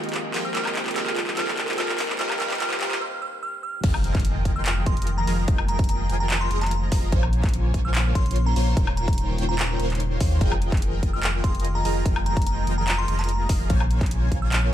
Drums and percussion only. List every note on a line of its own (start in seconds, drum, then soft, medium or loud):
0.04 closed hi-hat soft
0.09 closed hi-hat medium
0.14 clap medium
0.14 closed hi-hat medium
0.34 clap medium
0.34 open hi-hat medium
0.55 clap medium
0.55 closed hi-hat medium
0.65 clap medium
0.65 high woodblock medium
0.75 clap loud
0.75 closed hi-hat medium
0.86 clap medium
0.86 closed hi-hat soft
0.91 closed hi-hat medium
0.96 clap medium
0.96 closed hi-hat medium
1.06 clap medium
1.16 clap loud
1.16 closed hi-hat medium
1.27 clap medium
1.37 clap loud
1.37 closed hi-hat medium
1.48 clap medium
1.57 clap loud
1.57 closed hi-hat medium
1.68 clap medium
1.68 closed hi-hat medium
1.73 closed hi-hat medium
1.78 clap loud
1.78 closed hi-hat medium
1.89 clap medium
1.99 clap loud
1.99 open hi-hat loud
2.09 clap medium
2.19 clap loud
2.19 closed hi-hat medium
2.30 clap medium
2.30 high woodblock medium
2.40 clap loud
2.40 closed hi-hat medium
2.50 clap medium
2.50 closed hi-hat medium
2.55 closed hi-hat medium
2.60 clap loud
2.60 closed hi-hat medium
2.71 clap medium
2.81 clap loud
2.81 closed hi-hat medium
2.91 clap medium
3.84 kick loud
3.84 closed hi-hat medium
3.84 crash loud
3.94 high woodblock medium
4.04 closed hi-hat medium
4.15 kick loud
4.15 clap soft
4.15 closed hi-hat soft
4.20 closed hi-hat medium
4.25 closed hi-hat medium
4.45 kick medium
4.45 closed hi-hat medium
4.66 clap loud
4.66 closed hi-hat medium
4.86 kick loud
4.86 closed hi-hat medium
4.97 closed hi-hat medium
5.02 closed hi-hat medium
5.07 closed hi-hat medium
5.27 open hi-hat medium
5.48 kick loud
5.48 closed hi-hat medium
5.58 high woodblock medium
5.68 closed hi-hat medium
5.79 kick loud
5.79 closed hi-hat soft
5.84 closed hi-hat medium
5.89 closed hi-hat medium
6.10 closed hi-hat medium
6.30 clap loud
6.30 closed hi-hat medium
6.51 closed hi-hat medium
6.61 clap soft
6.61 closed hi-hat soft
6.66 closed hi-hat medium
6.71 closed hi-hat medium
6.92 kick loud
6.92 open hi-hat medium
7.12 kick loud
7.12 closed hi-hat medium
7.23 high woodblock medium
7.33 closed hi-hat medium
7.43 kick loud
7.43 clap soft
7.43 closed hi-hat soft
7.49 closed hi-hat medium
7.54 closed hi-hat medium
7.74 kick medium
7.74 closed hi-hat medium
7.95 clap loud
7.95 closed hi-hat medium
8.15 kick loud
8.15 closed hi-hat medium
8.26 closed hi-hat soft
8.31 closed hi-hat medium
8.36 closed hi-hat medium
8.56 open hi-hat medium
8.77 kick loud
8.77 closed hi-hat medium
8.87 high woodblock medium
8.97 closed hi-hat medium
9.08 kick loud
9.08 closed hi-hat soft
9.13 closed hi-hat medium
9.18 closed hi-hat medium
9.38 closed hi-hat medium
9.59 clap loud
9.59 closed hi-hat medium
9.80 closed hi-hat medium
9.90 clap soft
9.90 closed hi-hat soft
9.95 closed hi-hat medium
10.00 closed hi-hat medium
10.20 kick loud
10.20 open hi-hat medium
10.41 kick loud
10.41 closed hi-hat medium
10.52 high woodblock medium
10.62 closed hi-hat medium
10.72 kick loud
10.72 clap soft
10.72 closed hi-hat soft
10.77 closed hi-hat medium
10.82 closed hi-hat medium
11.03 kick medium
11.03 closed hi-hat medium
11.23 clap loud
11.23 closed hi-hat medium
11.44 kick loud
11.44 closed hi-hat medium
11.55 closed hi-hat soft
11.60 closed hi-hat medium
11.65 closed hi-hat medium
11.85 open hi-hat medium
12.06 kick loud
12.06 closed hi-hat medium
12.16 high woodblock medium
12.26 closed hi-hat medium
12.37 kick loud
12.37 closed hi-hat soft
12.42 closed hi-hat medium
12.47 closed hi-hat medium
12.67 closed hi-hat medium
12.88 clap loud
12.88 closed hi-hat medium
13.08 closed hi-hat medium
13.19 clap soft
13.19 closed hi-hat medium
13.24 closed hi-hat medium
13.29 closed hi-hat medium
13.49 kick loud
13.49 open hi-hat loud
13.70 kick loud
13.70 closed hi-hat medium
13.80 high woodblock medium
13.91 closed hi-hat medium
14.01 kick loud
14.01 clap soft
14.01 closed hi-hat soft
14.06 closed hi-hat medium
14.11 closed hi-hat medium
14.32 kick medium
14.32 closed hi-hat medium
14.52 clap loud
14.52 closed hi-hat medium